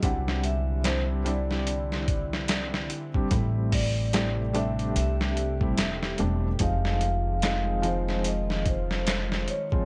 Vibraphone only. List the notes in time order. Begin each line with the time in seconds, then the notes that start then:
0.04 F#5
0.45 E5
0.85 C5
1.27 D5
3.74 D5
4.56 E5
4.97 E5
6.62 F5
7.45 F5
7.86 C5
8.26 D#5
8.67 C5
9.49 C#5